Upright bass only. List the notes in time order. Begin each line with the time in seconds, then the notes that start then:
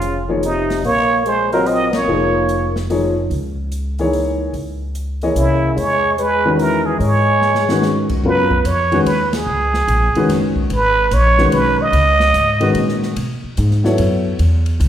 Already playing: F1
0.83 A#1
2.07 F1
3.30 C#2
4.53 C#2
5.35 C2
5.77 E2
7.00 G#2
8.09 muted upright bass stroke
8.24 F#2
8.65 F2
9.06 D#2
9.47 C#2
9.88 A#1
10.15 muted upright bass stroke
10.29 F#1
10.70 G#1
11.11 A#1
11.52 B1
11.93 C#2
12.34 G#2
12.75 A#2
13.16 B2
13.44 muted upright bass stroke
13.58 G#2
13.99 F#2
14.39 E2
14.80 C#2